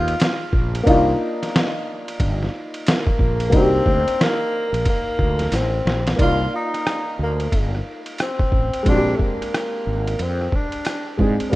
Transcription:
Already playing: fretless electric bass D#2, grand piano G#3 B3 D#4 F4, tenor saxophone F4
0.08 ride
0.20 snare, hi-hat pedal, ride
0.53 fretless electric bass A#1, kick
0.75 ride
0.83 fretless electric bass C2, grand piano A#3 D4 D#4, kick, ride
0.89 grand piano F4
1.43 snare, ride
1.56 snare, hi-hat pedal, ride
2.08 ride
2.20 fretless electric bass G1, kick, ride
2.43 snare
2.74 ride
2.87 tenor saxophone A#3, snare, hi-hat pedal, ride
3.07 kick
3.19 fretless electric bass A#1, kick
3.40 ride
3.50 fretless electric bass C2, grand piano A#3 D4, kick, ride
3.54 tenor saxophone C4, grand piano D#4 F#4
3.62 grand piano G4
3.86 fretless electric bass D2, kick
4.08 ride
4.21 tenor saxophone A#3, snare, hi-hat pedal, ride
4.72 fretless electric bass A#1, ride
4.85 tenor saxophone A#3, kick, ride
5.19 fretless electric bass D2, kick
5.39 snare, ride
5.52 fretless electric bass A1, tenor saxophone C4, snare, hi-hat pedal, ride
5.85 fretless electric bass A#1, snare
6.07 snare, ride
6.16 fretless electric bass C2, grand piano A#3 D5, kick, ride
6.20 grand piano D#4 F4, tenor saxophone F4
6.55 tenor saxophone D#4
6.74 cross-stick, ride
6.87 cross-stick, hi-hat pedal, ride
7.19 fretless electric bass D2, tenor saxophone A#3
7.40 ride
7.52 fretless electric bass G1, kick, ride
7.75 cross-stick
8.06 ride
8.18 tenor saxophone C4, cross-stick, hi-hat pedal, ride
8.39 kick
8.52 fretless electric bass A1, kick
8.73 ride
8.83 fretless electric bass A#1, grand piano G#3 C4, kick, ride
8.87 grand piano D4 F#4, tenor saxophone D4
8.95 grand piano G4
9.16 tenor saxophone A3, kick
9.22 tenor saxophone A#3
9.42 cross-stick, ride
9.54 cross-stick, hi-hat pedal, ride
9.87 fretless electric bass G#1
10.07 ride
10.19 fretless electric bass F2, tenor saxophone C4, ride
10.41 cross-stick
10.52 tenor saxophone D4, kick
10.72 ride
10.85 cross-stick, hi-hat pedal, ride
11.17 fretless electric bass G#2, grand piano G#3 C4 D4 G#4, kick
11.40 ride
11.50 grand piano G3 A#3

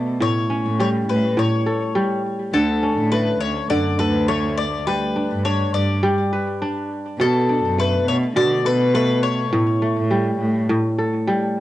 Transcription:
Already playing: cello B2, kora B2 A3 D4 A4, mandolin D5
0.20 kora A2, mandolin C#5
0.50 kora C#4
0.66 cello A2
0.80 kora G3, mandolin C#5
1.08 cello A2, mandolin B4
1.37 kora A2, mandolin C#5
1.66 kora A4
1.95 kora G3
2.54 cello D2, kora D3, mandolin A4
2.83 kora C#4
2.99 cello A2
3.12 kora A3, mandolin B4
3.41 cello D2, mandolin C#5
3.70 cello F#2, kora D3, mandolin D5
3.99 cello D2, kora A4, mandolin B4
4.28 kora A3, mandolin C#5
4.58 mandolin D5
4.87 kora G3, mandolin B4
5.16 kora D4
5.32 cello G2
5.45 kora D4, mandolin C#5
5.74 cello G2, mandolin D5
6.03 kora G3
6.33 kora B4
6.62 kora D4
7.19 cello B2, kora B2, mandolin A4
7.49 kora D4
7.65 cello F#2
7.78 kora A3, mandolin B4
8.07 cello B2, mandolin C#5
8.36 kora B2, cello D3, mandolin D5
8.65 cello B2, kora A4, mandolin B4
8.94 kora A3, mandolin B4
9.23 mandolin C#5
9.53 kora A2
9.82 kora A3
9.98 cello A2
10.11 kora G3
10.39 cello A2
10.69 kora A2
10.98 kora A4
11.28 kora G3

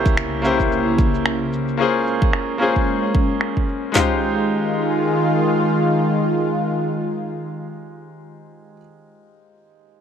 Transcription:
Already playing: analog synth pad C2 C#3 A#3 E4, grand piano A#3 C#4 E4 G4 C5
0.06 kick, shaker
0.17 finger snap, shaker
0.42 grand piano A#3 C#4 E4 G4, shaker
0.46 grand piano C5
0.60 kick, shaker
0.72 shaker
0.98 kick, shaker
1.14 shaker
1.26 finger snap, shaker
1.53 shaker
1.68 shaker
1.77 analog synth pad G#3 C#4, grand piano A#3 C#4 F4 G#4, shaker
1.82 grand piano C5
2.07 shaker
2.22 kick, shaker
2.33 finger snap, shaker
2.58 grand piano A#3 C#4 F4 G#4, shaker
2.62 grand piano C5
2.76 kick, shaker
2.88 shaker
3.15 kick
3.30 shaker
3.41 finger snap, shaker
3.57 kick
3.68 shaker
3.84 shaker
3.92 analog synth pad D#3 G#3 F4, grand piano G#3 D#4 F4, snare, clap, floor tom
3.97 grand piano G4 C5

